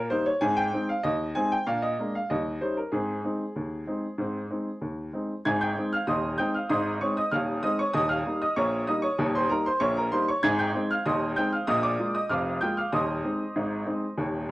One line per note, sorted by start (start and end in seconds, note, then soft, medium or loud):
0.00 0.11 A#4 medium
0.10 0.28 G3 medium
0.10 0.28 A#3 medium
0.10 0.29 D#4 medium
0.10 0.27 C5 medium
0.26 0.42 C#5 medium
0.41 0.69 G#2 medium
0.41 0.60 C4 medium
0.41 0.58 G#5 loud
0.57 0.87 G5 loud
0.73 0.91 G#3 soft
0.73 0.91 C4 medium
0.73 0.91 D#4 medium
0.89 1.05 F5 medium
1.03 1.31 D#2 medium
1.03 1.29 D#5 medium
1.35 1.53 G#3 soft
1.35 1.53 C4 medium
1.35 1.54 D#4 soft
1.35 1.51 G#5 loud
1.52 1.68 G5 medium
1.67 1.94 A#2 medium
1.67 1.85 D4 medium
1.67 1.83 F5 medium
1.82 2.12 D#5 medium
1.99 2.16 G#3 soft
1.99 2.17 A#3 soft
1.99 2.17 D4 soft
2.15 2.30 F5 medium
2.30 2.57 D#2 medium
2.30 2.49 G3 soft
2.30 2.60 D#5 medium
2.61 2.79 G3 soft
2.61 2.79 C#4 soft
2.61 2.80 D#4 soft
2.61 2.77 C5 medium
2.77 2.93 A#4 medium
2.92 3.19 G#2 medium
2.92 3.11 C4 soft
2.92 4.77 G#4 medium
3.24 3.42 G#3 soft
3.24 3.42 C4 soft
3.24 3.42 D#4 soft
3.56 3.82 D#2 medium
3.87 4.04 G#3 soft
3.87 4.05 C4 soft
3.87 4.05 D#4 soft
4.18 4.45 G#2 medium
4.18 4.37 C4 soft
4.50 4.68 G#3 soft
4.50 4.68 C4 soft
4.50 4.68 D#4 soft
4.82 5.08 D#2 medium
5.13 5.30 G#3 soft
5.13 5.31 C4 soft
5.13 5.31 D#4 soft
5.45 5.72 G#1 medium
5.45 5.72 G#2 medium
5.45 5.60 G#5 medium
5.45 5.61 G#6 loud
5.61 5.90 G5 medium
5.61 5.90 G6 medium
5.77 5.94 G#3 soft
5.77 5.94 C4 soft
5.77 5.94 D#4 medium
5.93 6.07 F5 medium
5.93 6.08 F6 medium
6.07 6.34 D#1 medium
6.07 6.34 D#2 medium
6.07 6.37 D#5 medium
6.07 6.37 C6 medium
6.07 6.37 D#6 medium
6.38 6.55 G#3 soft
6.38 6.56 C4 medium
6.38 6.56 D#4 medium
6.38 6.53 G5 medium
6.38 6.54 G6 medium
6.54 6.69 F5 medium
6.54 6.70 F6 medium
6.69 6.96 G#1 medium
6.69 6.96 G#2 medium
6.69 6.99 D#5 medium
6.69 6.99 C6 medium
6.69 6.94 D#6 medium
7.01 7.18 G#3 soft
7.01 7.18 C4 soft
7.01 7.19 D#4 soft
7.01 7.16 C#5 medium
7.01 7.16 C#6 medium
7.17 7.32 D#5 medium
7.17 7.32 D#6 medium
7.31 7.59 D#1 medium
7.31 7.59 D#2 medium
7.31 7.61 F5 medium
7.31 7.61 F6 medium
7.63 7.80 G#3 medium
7.63 7.81 C4 medium
7.63 7.81 D#4 medium
7.63 7.78 D#5 medium
7.63 7.78 D#6 medium
7.79 7.94 C#5 medium
7.79 7.94 C#6 medium
7.93 8.21 D#1 medium
7.93 8.21 D#2 medium
7.93 8.09 D#5 medium
7.93 8.09 D#6 loud
8.09 8.39 F5 medium
8.09 8.39 F6 medium
8.26 8.43 G3 soft
8.26 8.43 A#3 soft
8.26 8.44 D#4 medium
8.42 8.56 D#5 medium
8.42 8.57 D#6 medium
8.56 8.83 A#1 medium
8.56 8.83 A#2 medium
8.56 8.86 C#5 medium
8.56 8.86 A#5 medium
8.56 8.81 C#6 medium
8.87 9.05 G3 medium
8.87 9.05 A#3 soft
8.87 9.06 D#4 medium
8.87 9.03 D#5 medium
8.87 9.03 D#6 medium
9.02 9.32 C#5 medium
9.02 9.32 C#6 medium
9.19 9.45 D#1 medium
9.19 9.45 D#2 medium
9.35 9.50 C5 medium
9.35 9.50 C6 medium
9.49 9.67 G3 soft
9.49 9.67 A#3 medium
9.49 9.68 D#4 medium
9.49 9.65 A#4 medium
9.49 9.65 A#5 medium
9.66 9.81 C5 medium
9.66 9.81 C6 medium
9.80 10.07 A#1 medium
9.80 10.07 A#2 medium
9.80 9.96 C#5 medium
9.80 9.96 C#6 loud
9.97 10.12 A#4 medium
9.97 10.12 A#5 medium
10.12 10.29 G3 medium
10.12 10.30 A#3 medium
10.12 10.30 D#4 medium
10.12 10.27 C5 medium
10.12 10.27 C6 loud
10.28 10.43 C#5 medium
10.28 10.43 C#6 medium
10.43 10.70 G#1 medium
10.43 10.70 G#2 loud
10.43 10.58 G#5 medium
10.43 10.58 G#6 loud
10.59 10.88 G5 medium
10.59 10.83 G6 loud
10.75 10.92 G#3 medium
10.75 10.92 C4 medium
10.75 10.92 D#4 medium
10.91 11.05 F5 medium
10.91 11.06 F6 medium
11.06 11.32 D#1 medium
11.06 11.32 D#2 medium
11.06 11.35 D#5 medium
11.06 11.35 C6 medium
11.06 11.30 D#6 medium
11.36 11.54 G#3 medium
11.36 11.54 C4 medium
11.36 11.54 D#4 medium
11.36 11.52 G5 medium
11.36 11.52 G6 loud
11.53 11.67 F5 medium
11.53 11.68 F6 medium
11.67 11.94 A#1 medium
11.67 11.94 A#2 medium
11.67 11.83 D#5 medium
11.67 11.83 D#6 loud
11.83 12.13 D5 medium
11.83 12.13 D6 medium
11.99 12.16 G#3 soft
11.99 12.16 A#3 soft
11.99 12.17 F4 medium
12.15 12.30 D#5 medium
12.15 12.30 D#6 medium
12.29 12.57 F1 medium
12.29 12.57 F2 medium
12.29 12.60 F5 medium
12.29 12.60 D6 medium
12.29 12.55 F6 medium
12.61 12.79 G#3 soft
12.61 12.79 A#3 soft
12.61 12.79 F4 medium
12.61 12.76 G5 medium
12.61 12.77 G6 medium
12.77 12.92 F5 medium
12.77 12.93 F6 medium
12.92 13.19 D#1 medium
12.92 13.19 D#2 medium
12.92 14.51 D#5 medium
12.92 14.51 C6 medium
12.92 14.51 D#6 medium
13.24 13.41 G#3 soft
13.24 13.41 C4 soft
13.24 13.42 D#4 medium
13.56 13.82 G#1 medium
13.56 13.82 G#2 medium
13.86 14.04 G#3 soft
13.86 14.04 C4 soft
13.86 14.04 D#4 medium
14.18 14.44 D#1 medium
14.18 14.44 D#2 medium